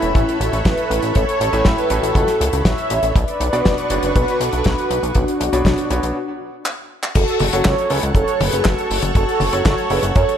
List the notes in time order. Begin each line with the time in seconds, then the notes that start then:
Already playing: A2 C#4 E4 A4 B4 C#5 E5 B5
0.02 E1, closed hi-hat
0.15 A1, kick, closed hi-hat
0.29 closed hi-hat
0.40 A1 F#4 A4, closed hi-hat
0.53 A1, closed hi-hat
0.65 A1 E4 B4, kick, snare, closed hi-hat
0.77 closed hi-hat
0.90 A1, closed hi-hat
1.02 A1, closed hi-hat
1.15 A1 A4 C#5, kick, closed hi-hat
1.29 closed hi-hat
1.40 A1 A4 C#5, closed hi-hat
1.53 A1 A2 C#4 E4 A4 B4, closed hi-hat
1.65 A1 E4 B4, kick, snare, closed hi-hat
1.78 closed hi-hat
1.90 A1 A2 C#4 E4 F#4 A4 B4, closed hi-hat
2.03 A1, closed hi-hat
2.15 C#2, kick, closed hi-hat
2.27 snare, closed hi-hat
2.41 C#2, closed hi-hat
2.53 C#2, closed hi-hat
2.65 A1 C#5 E5, kick, snare, closed hi-hat
2.78 closed hi-hat
2.90 A1, closed hi-hat
3.03 A1, closed hi-hat
3.15 B1 D4 B4 F#5 C#6, kick, closed hi-hat
3.28 closed hi-hat
3.40 B1, closed hi-hat
3.53 B1 B2 D4 F#4 B4 D5, closed hi-hat
3.65 F#1, kick, snare, closed hi-hat
3.78 closed hi-hat
3.90 F#1 B2 D4 F#4 B4 C#5, closed hi-hat
4.03 F#1, closed hi-hat
4.16 B1 F#4 B4, kick, closed hi-hat
4.28 closed hi-hat
4.40 B1 F#4 A4, closed hi-hat
4.53 B1, closed hi-hat
4.64 B1 F#4 B4, kick, snare, closed hi-hat
4.78 closed hi-hat
4.90 B1, closed hi-hat
5.03 B1, closed hi-hat
5.15 B1 D4 F#4, kick, closed hi-hat
5.28 closed hi-hat
5.40 B1, closed hi-hat
5.53 B1 B2 D4 F#4 B4 C#5, closed hi-hat
5.65 B1, kick, snare, closed hi-hat
5.78 closed hi-hat
5.90 B1 B2 D4 F#4 B4 C#5, closed hi-hat
6.03 B1, closed hi-hat
6.66 clap
7.03 clap
7.15 F#1 F#4 A4 C#5 F#5 C#6, kick, closed hi-hat, crash
7.28 closed hi-hat
7.39 F#1, open hi-hat, high tom
7.53 F#1 F#3 C#4 F#4 A4 C#5, closed hi-hat
7.65 C#2 A4 C#5, kick, snare, clap, closed hi-hat
7.78 closed hi-hat
7.90 C#2 F#3 C#4 F#4 G#4 A4 B4 C#5, open hi-hat
8.03 C#2, closed hi-hat
8.15 F#1 A4 C#5, kick, closed hi-hat
8.28 closed hi-hat
8.40 F#1 G#4 B4, open hi-hat, high tom
8.52 F#1, closed hi-hat
8.64 F#1 F#4, kick, snare, clap, closed hi-hat
8.78 closed hi-hat
8.90 F#1, open hi-hat
9.02 F#1, closed hi-hat, high tom
9.15 F#1 F#4 A4, kick, closed hi-hat
9.29 closed hi-hat
9.40 F#1, open hi-hat, high tom
9.53 F#1 F#3 C#4 F#4 A4 C#5, closed hi-hat
9.65 F#1 A4 C#5, kick, snare, clap, closed hi-hat
9.78 closed hi-hat
9.90 F#1 F#3 C#4 F#4 G#4 A4 B4 C#5, open hi-hat
10.03 F#1, closed hi-hat
10.15 F#2 A4 C#5, kick, closed hi-hat
10.29 closed hi-hat